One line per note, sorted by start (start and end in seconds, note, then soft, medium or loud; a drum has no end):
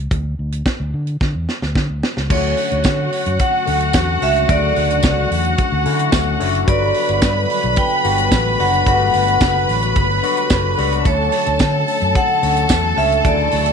0.11 0.34 D2 loud
0.11 kick loud
0.11 closed hi-hat medium
0.39 0.61 D2 medium
0.52 closed hi-hat medium
0.66 kick loud
0.66 snare medium
0.66 closed hi-hat soft
0.80 0.91 D2 medium
0.94 1.16 D3 loud
1.07 closed hi-hat soft
1.21 1.32 D3 loud
1.21 kick loud
1.21 snare medium
1.35 1.46 E2 medium
1.49 snare medium
1.62 1.73 D2 medium
1.62 snare medium
1.75 1.87 D3 loud
1.75 kick loud
1.75 snare medium
1.90 2.01 D2 medium
2.03 snare medium
2.17 2.28 C#2 medium
2.17 snare medium
2.29 2.53 D2 loud
2.29 3.19 D3 medium
2.29 3.20 F#3 medium
2.29 3.20 A3 medium
2.29 3.20 C#4 medium
2.29 2.37 F4 medium
2.29 6.64 F#4 medium
2.29 3.44 C#5 medium
2.29 6.64 F#5 loud
2.29 kick loud
2.29 crash loud
2.37 3.24 F#4 medium
2.57 open hi-hat medium
2.71 2.83 D2 loud
2.71 closed hi-hat medium
2.84 3.07 D3 loud
2.84 kick loud
2.84 snare loud
2.84 closed hi-hat medium
2.84 tambourine medium
3.12 open hi-hat medium
3.26 3.38 F#2 loud
3.26 closed hi-hat soft
3.39 3.91 F#5 medium
3.39 kick loud
3.39 closed hi-hat medium
3.66 3.90 D2 medium
3.66 4.11 D3 medium
3.66 4.12 F#3 medium
3.66 4.12 A3 medium
3.66 4.12 C#4 medium
3.66 4.12 F#4 medium
3.66 open hi-hat medium
3.81 closed hi-hat medium
3.93 4.17 E2 loud
3.93 kick loud
3.93 snare loud
3.93 closed hi-hat medium
3.93 tambourine loud
4.21 4.44 C#2 medium
4.21 4.44 D3 medium
4.21 4.44 F#3 medium
4.21 4.44 A3 medium
4.21 4.45 C#4 medium
4.21 4.45 F#4 medium
4.21 4.51 E5 loud
4.21 open hi-hat medium
4.36 closed hi-hat soft
4.48 4.71 D2 loud
4.48 5.39 C#3 medium
4.48 5.38 D3 medium
4.48 5.38 F#3 medium
4.48 5.39 A3 medium
4.48 5.39 F#4 medium
4.48 5.28 D5 loud
4.48 kick loud
4.48 closed hi-hat medium
4.76 4.99 D2 loud
4.76 open hi-hat medium
4.90 closed hi-hat medium
5.03 5.26 C#2 loud
5.03 kick loud
5.03 snare loud
5.03 closed hi-hat medium
5.03 tambourine medium
5.31 5.54 E2 medium
5.31 open hi-hat medium
5.45 closed hi-hat soft
5.58 kick loud
5.58 closed hi-hat medium
5.72 5.83 D2 loud
5.85 6.30 D3 medium
5.85 6.08 D3 loud
5.85 6.30 F#3 medium
5.85 6.31 A3 medium
5.85 6.31 C#4 medium
5.85 5.93 E4 medium
5.85 open hi-hat medium
5.93 6.34 F#4 loud
5.99 closed hi-hat medium
6.12 6.35 D2 loud
6.12 kick loud
6.12 snare loud
6.12 closed hi-hat medium
6.12 tambourine loud
6.39 6.63 F#1 medium
6.39 6.62 D3 medium
6.39 6.63 F#3 medium
6.39 6.63 A3 medium
6.39 6.63 C#4 medium
6.39 6.63 F#4 medium
6.39 open hi-hat medium
6.55 closed hi-hat soft
6.67 6.90 G1 loud
6.67 7.57 D3 medium
6.67 7.57 F#3 medium
6.67 7.57 G3 medium
6.67 7.58 B3 medium
6.67 7.58 F#4 medium
6.67 11.02 B4 medium
6.67 7.81 D5 medium
6.67 11.02 B5 loud
6.67 kick loud
6.67 closed hi-hat medium
6.94 open hi-hat medium
7.09 7.20 G1 loud
7.09 closed hi-hat medium
7.22 7.45 G2 loud
7.22 kick loud
7.22 snare loud
7.22 closed hi-hat medium
7.22 tambourine medium
7.50 open hi-hat medium
7.63 7.75 B1 loud
7.63 closed hi-hat soft
7.76 8.29 G5 medium
7.76 kick loud
7.76 closed hi-hat medium
8.04 8.27 G1 loud
8.04 8.49 D3 medium
8.04 8.49 F#3 medium
8.04 8.49 G3 medium
8.04 8.50 B3 medium
8.04 8.50 F#4 medium
8.04 open hi-hat medium
8.18 closed hi-hat medium
8.32 8.54 A1 loud
8.32 kick loud
8.32 snare loud
8.32 closed hi-hat medium
8.32 tambourine loud
8.58 8.82 F#1 medium
8.58 8.81 D3 medium
8.58 8.81 F#3 medium
8.58 8.81 G3 medium
8.58 8.82 B3 medium
8.58 8.82 F#4 medium
8.58 8.86 F#5 loud
8.58 open hi-hat medium
8.74 closed hi-hat soft
8.86 9.09 G1 loud
8.86 9.76 D3 medium
8.86 9.76 F#3 medium
8.86 9.76 G3 medium
8.86 8.94 A3 medium
8.86 9.77 F#4 loud
8.86 9.65 F#5 loud
8.86 kick loud
8.86 closed hi-hat medium
8.94 9.80 B3 medium
9.13 9.37 G1 medium
9.13 open hi-hat medium
9.28 closed hi-hat medium
9.41 9.64 F#1 loud
9.41 kick loud
9.41 snare loud
9.41 closed hi-hat medium
9.41 tambourine medium
9.69 9.91 A1 loud
9.69 open hi-hat medium
9.82 closed hi-hat soft
9.95 10.19 G1 loud
9.95 kick loud
9.95 closed hi-hat medium
10.22 10.68 D3 medium
10.22 10.68 F#3 medium
10.22 10.68 G3 medium
10.22 10.68 B3 medium
10.22 10.68 F#4 medium
10.22 open hi-hat medium
10.37 closed hi-hat medium
10.50 10.73 F#1 loud
10.50 kick loud
10.50 snare loud
10.50 closed hi-hat medium
10.50 tambourine loud
10.77 11.01 C#2 medium
10.77 11.00 D3 medium
10.77 11.00 F#3 medium
10.77 11.01 G3 medium
10.77 11.01 B3 medium
10.77 11.01 F#4 medium
10.77 open hi-hat medium
10.92 closed hi-hat soft
11.05 11.28 D2 medium
11.05 11.95 D3 medium
11.05 11.95 F#3 medium
11.05 11.95 A3 medium
11.05 11.96 C#4 medium
11.05 11.13 E4 medium
11.05 13.73 A4 loud
11.05 12.19 C#5 medium
11.05 13.73 A5 loud
11.05 kick loud
11.05 closed hi-hat medium
11.13 11.99 F#4 medium
11.32 open hi-hat medium
11.46 11.58 D2 medium
11.46 closed hi-hat medium
11.59 11.83 D3 loud
11.59 kick loud
11.59 snare loud
11.59 closed hi-hat medium
11.59 tambourine medium
11.88 open hi-hat medium
12.01 12.13 F#2 loud
12.01 closed hi-hat soft
12.15 12.67 F#5 loud
12.15 kick loud
12.15 closed hi-hat medium
12.41 12.65 D2 medium
12.41 12.87 D3 medium
12.41 12.87 F#3 medium
12.41 12.87 A3 medium
12.41 12.87 C#4 medium
12.41 12.88 F#4 medium
12.41 open hi-hat medium
12.57 closed hi-hat medium
12.69 12.92 E2 loud
12.69 kick loud
12.69 snare loud
12.69 closed hi-hat medium
12.69 tambourine loud
12.96 13.20 C#2 medium
12.96 13.19 D3 medium
12.96 13.19 F#3 medium
12.96 13.19 A3 medium
12.96 13.20 C#4 medium
12.96 13.20 F#4 medium
12.96 13.26 E5 loud
12.96 open hi-hat medium
13.12 closed hi-hat soft
13.24 13.47 D2 loud
13.24 13.73 C#3 medium
13.24 13.73 D3 medium
13.24 13.73 F#3 medium
13.24 13.73 A3 medium
13.24 13.73 E4 medium
13.24 13.73 D5 medium
13.24 kick loud
13.24 closed hi-hat medium
13.51 13.73 D2 medium
13.51 open hi-hat medium
13.66 closed hi-hat medium